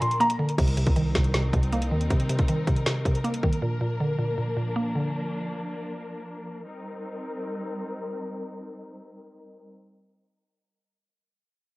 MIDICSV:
0, 0, Header, 1, 6, 480
1, 0, Start_track
1, 0, Key_signature, -3, "minor"
1, 0, Tempo, 379747
1, 738, Time_signature, 4, 2, 24, 8
1, 14873, End_track
2, 0, Start_track
2, 0, Title_t, "Grand piano"
2, 0, Program_c, 0, 0
2, 10, Note_on_c, 0, 84, 70
2, 193, Note_off_c, 0, 84, 0
2, 260, Note_on_c, 0, 82, 87
2, 439, Note_off_c, 0, 82, 0
2, 14873, End_track
3, 0, Start_track
3, 0, Title_t, "String section"
3, 0, Program_c, 1, 48
3, 0, Note_on_c, 1, 53, 91
3, 0, Note_on_c, 1, 58, 83
3, 0, Note_on_c, 1, 62, 84
3, 0, Note_on_c, 1, 70, 99
3, 687, Note_off_c, 1, 70, 0
3, 699, Note_off_c, 1, 53, 0
3, 699, Note_off_c, 1, 58, 0
3, 699, Note_off_c, 1, 62, 0
3, 738, Note_on_c, 1, 63, 81
3, 739, Note_on_c, 1, 55, 87
3, 739, Note_on_c, 1, 60, 82
3, 739, Note_on_c, 1, 70, 98
3, 4540, Note_off_c, 1, 55, 0
3, 4540, Note_off_c, 1, 60, 0
3, 4540, Note_off_c, 1, 63, 0
3, 4577, Note_on_c, 1, 58, 81
3, 4578, Note_on_c, 1, 53, 88
3, 4578, Note_on_c, 1, 62, 82
3, 8368, Note_off_c, 1, 70, 0
3, 8379, Note_off_c, 1, 53, 0
3, 8379, Note_off_c, 1, 58, 0
3, 8380, Note_off_c, 1, 62, 0
3, 8417, Note_on_c, 1, 60, 78
3, 8417, Note_on_c, 1, 63, 76
3, 8418, Note_on_c, 1, 55, 84
3, 8418, Note_on_c, 1, 70, 92
3, 12205, Note_off_c, 1, 60, 0
3, 12205, Note_off_c, 1, 63, 0
3, 12206, Note_off_c, 1, 55, 0
3, 12206, Note_off_c, 1, 70, 0
3, 14873, End_track
4, 0, Start_track
4, 0, Title_t, "Synth pluck"
4, 0, Program_c, 2, 84
4, 0, Note_on_c, 2, 50, 77
4, 23, Note_on_c, 2, 46, 77
4, 255, Note_on_c, 2, 58, 108
4, 481, Note_off_c, 2, 50, 0
4, 496, Note_on_c, 2, 50, 82
4, 737, Note_off_c, 2, 50, 0
4, 737, Note_off_c, 2, 58, 0
4, 739, Note_on_c, 2, 48, 93
4, 740, Note_off_c, 2, 46, 0
4, 963, Note_off_c, 2, 48, 0
4, 978, Note_on_c, 2, 48, 76
4, 1217, Note_on_c, 2, 51, 83
4, 1444, Note_off_c, 2, 48, 0
4, 1459, Note_on_c, 2, 48, 88
4, 1681, Note_off_c, 2, 48, 0
4, 1696, Note_on_c, 2, 48, 72
4, 1924, Note_off_c, 2, 48, 0
4, 1939, Note_on_c, 2, 48, 76
4, 2182, Note_on_c, 2, 58, 97
4, 2401, Note_off_c, 2, 51, 0
4, 2417, Note_on_c, 2, 51, 75
4, 2643, Note_off_c, 2, 48, 0
4, 2658, Note_on_c, 2, 48, 87
4, 2881, Note_off_c, 2, 48, 0
4, 2896, Note_on_c, 2, 48, 76
4, 3127, Note_off_c, 2, 51, 0
4, 3142, Note_on_c, 2, 51, 79
4, 3361, Note_off_c, 2, 48, 0
4, 3376, Note_on_c, 2, 48, 89
4, 3380, Note_off_c, 2, 58, 0
4, 3605, Note_off_c, 2, 48, 0
4, 3620, Note_on_c, 2, 48, 70
4, 3845, Note_off_c, 2, 48, 0
4, 3860, Note_on_c, 2, 48, 80
4, 4098, Note_on_c, 2, 58, 95
4, 4326, Note_off_c, 2, 51, 0
4, 4342, Note_on_c, 2, 51, 81
4, 4578, Note_off_c, 2, 58, 0
4, 4578, Note_on_c, 2, 46, 89
4, 4579, Note_off_c, 2, 48, 0
4, 4580, Note_off_c, 2, 51, 0
4, 4800, Note_off_c, 2, 46, 0
4, 4815, Note_on_c, 2, 46, 83
4, 5061, Note_on_c, 2, 50, 77
4, 5276, Note_off_c, 2, 46, 0
4, 5291, Note_on_c, 2, 46, 86
4, 5521, Note_off_c, 2, 46, 0
4, 5536, Note_on_c, 2, 46, 71
4, 5759, Note_off_c, 2, 46, 0
4, 5774, Note_on_c, 2, 46, 75
4, 6017, Note_on_c, 2, 58, 91
4, 6247, Note_off_c, 2, 50, 0
4, 6262, Note_on_c, 2, 50, 77
4, 6976, Note_off_c, 2, 46, 0
4, 7217, Note_off_c, 2, 58, 0
4, 7460, Note_off_c, 2, 50, 0
4, 14873, End_track
5, 0, Start_track
5, 0, Title_t, "808-style bass"
5, 0, Program_c, 3, 38
5, 738, Note_on_c, 3, 36, 118
5, 1083, Note_off_c, 3, 36, 0
5, 1098, Note_on_c, 3, 36, 97
5, 1444, Note_off_c, 3, 36, 0
5, 1458, Note_on_c, 3, 36, 105
5, 1918, Note_off_c, 3, 36, 0
5, 1938, Note_on_c, 3, 36, 109
5, 2418, Note_on_c, 3, 39, 102
5, 2437, Note_off_c, 3, 36, 0
5, 2646, Note_off_c, 3, 39, 0
5, 14873, End_track
6, 0, Start_track
6, 0, Title_t, "Drums"
6, 22, Note_on_c, 9, 42, 83
6, 141, Note_off_c, 9, 42, 0
6, 141, Note_on_c, 9, 42, 57
6, 260, Note_off_c, 9, 42, 0
6, 260, Note_on_c, 9, 42, 75
6, 378, Note_off_c, 9, 42, 0
6, 378, Note_on_c, 9, 42, 81
6, 504, Note_off_c, 9, 42, 0
6, 616, Note_on_c, 9, 42, 61
6, 737, Note_off_c, 9, 42, 0
6, 737, Note_on_c, 9, 42, 83
6, 737, Note_on_c, 9, 49, 91
6, 738, Note_on_c, 9, 36, 110
6, 856, Note_off_c, 9, 42, 0
6, 856, Note_on_c, 9, 42, 63
6, 864, Note_off_c, 9, 36, 0
6, 864, Note_off_c, 9, 49, 0
6, 978, Note_off_c, 9, 42, 0
6, 978, Note_on_c, 9, 42, 86
6, 1095, Note_off_c, 9, 42, 0
6, 1095, Note_on_c, 9, 42, 55
6, 1098, Note_on_c, 9, 36, 105
6, 1217, Note_off_c, 9, 42, 0
6, 1217, Note_on_c, 9, 42, 69
6, 1224, Note_off_c, 9, 36, 0
6, 1344, Note_off_c, 9, 42, 0
6, 1458, Note_on_c, 9, 36, 92
6, 1458, Note_on_c, 9, 38, 95
6, 1459, Note_on_c, 9, 42, 79
6, 1574, Note_off_c, 9, 42, 0
6, 1574, Note_on_c, 9, 42, 53
6, 1584, Note_off_c, 9, 38, 0
6, 1585, Note_off_c, 9, 36, 0
6, 1698, Note_on_c, 9, 38, 115
6, 1700, Note_off_c, 9, 42, 0
6, 1700, Note_on_c, 9, 42, 89
6, 1824, Note_off_c, 9, 38, 0
6, 1827, Note_off_c, 9, 42, 0
6, 1938, Note_on_c, 9, 36, 96
6, 1943, Note_on_c, 9, 42, 78
6, 2061, Note_off_c, 9, 42, 0
6, 2061, Note_on_c, 9, 42, 57
6, 2065, Note_off_c, 9, 36, 0
6, 2181, Note_off_c, 9, 42, 0
6, 2181, Note_on_c, 9, 42, 72
6, 2298, Note_off_c, 9, 42, 0
6, 2298, Note_on_c, 9, 42, 76
6, 2425, Note_off_c, 9, 42, 0
6, 2537, Note_on_c, 9, 42, 59
6, 2658, Note_off_c, 9, 42, 0
6, 2658, Note_on_c, 9, 36, 108
6, 2658, Note_on_c, 9, 42, 84
6, 2776, Note_off_c, 9, 42, 0
6, 2776, Note_on_c, 9, 42, 64
6, 2784, Note_off_c, 9, 36, 0
6, 2898, Note_off_c, 9, 42, 0
6, 2898, Note_on_c, 9, 42, 86
6, 3015, Note_off_c, 9, 42, 0
6, 3015, Note_on_c, 9, 42, 53
6, 3018, Note_on_c, 9, 36, 104
6, 3137, Note_off_c, 9, 42, 0
6, 3137, Note_on_c, 9, 42, 70
6, 3144, Note_off_c, 9, 36, 0
6, 3263, Note_off_c, 9, 42, 0
6, 3378, Note_on_c, 9, 36, 91
6, 3379, Note_on_c, 9, 42, 77
6, 3494, Note_off_c, 9, 42, 0
6, 3494, Note_on_c, 9, 42, 51
6, 3505, Note_off_c, 9, 36, 0
6, 3618, Note_on_c, 9, 38, 116
6, 3620, Note_off_c, 9, 42, 0
6, 3621, Note_on_c, 9, 42, 86
6, 3745, Note_off_c, 9, 38, 0
6, 3747, Note_off_c, 9, 42, 0
6, 3859, Note_on_c, 9, 36, 92
6, 3864, Note_on_c, 9, 42, 79
6, 3982, Note_off_c, 9, 42, 0
6, 3982, Note_on_c, 9, 42, 55
6, 3985, Note_off_c, 9, 36, 0
6, 4101, Note_off_c, 9, 42, 0
6, 4101, Note_on_c, 9, 42, 71
6, 4219, Note_off_c, 9, 42, 0
6, 4219, Note_on_c, 9, 42, 73
6, 4337, Note_on_c, 9, 36, 99
6, 4346, Note_off_c, 9, 42, 0
6, 4457, Note_on_c, 9, 42, 58
6, 4464, Note_off_c, 9, 36, 0
6, 4583, Note_off_c, 9, 42, 0
6, 14873, End_track
0, 0, End_of_file